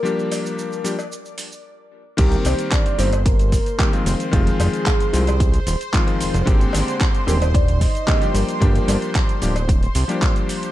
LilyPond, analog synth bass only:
\new Staff \with { instrumentName = "Analog synth bass" } { \clef bass \time 4/4 \key c \minor \tempo 4 = 112 r1 | c,16 r16 c,16 r8. g,,4 r4 f,,16 r16 | f,,16 r16 f,,16 r8. c,8. r16 ees,,16 r8. f,,16 f,,16 | aes,,16 r16 aes,,16 r8. ees,,4 r4 g,,16 r16 |
g,,16 r16 g,,16 r8. d,,8. r16 c,16 r4 r16 | }